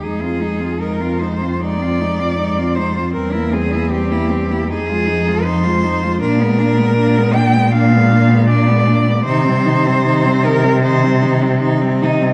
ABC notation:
X:1
M:4/4
L:1/16
Q:1/4=78
K:Fdor
V:1 name="Cello"
A4 B2 c2 d6 c2 | B2 A2 G4 A4 c4 | B6 g2 f4 d4 | c6 B2 c4 z2 E2 |]
V:2 name="Cello"
E F E F E F E F E F E F E F E F | C =E C E C E C E _E F E F E F E F | D _C D C D C D C D C D C D C D C | E C E C E C E C E C E C E C E C |]
V:3 name="Cello" clef=bass
A, C A, C A, C A, C A, C A, C A, C A, C | G, B, G, B, G, B, G, B, F, A, F, A, F, A, F, A, | B, A, B, A, B, A, B, A, B, A, B, A, B, A, B, A, | E, G, E, G, E, G, E, G, E, G, E, G, E, G, E, G, |]
V:4 name="Cello" clef=bass
F,,16 | =E,,8 F,,8 | B,,16 | C,16 |]